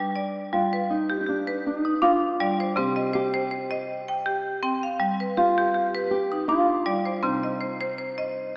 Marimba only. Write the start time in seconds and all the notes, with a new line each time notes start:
Already playing: B4
0.00 G3
0.16 D5
0.53 G3
0.73 B4
1.10 G4
1.26 G4
1.47 B4
1.85 D#4
2.02 D4
2.40 G3 D5
2.60 C5
2.76 C3 C4
2.96 D#5
3.13 C5
3.34 C5
3.51 C5
3.71 D#5
4.08 G5
4.26 G4
4.63 C4 G5
4.83 F5
5.00 G3
5.20 B4
5.37 G4
5.58 G4
5.74 G4
5.95 B4
6.32 D#4
6.49 D4
6.86 G3 D5
7.05 C5
7.23 C3 C4
7.43 D#5
7.61 C5
7.81 C5
7.98 C5
8.18 D#5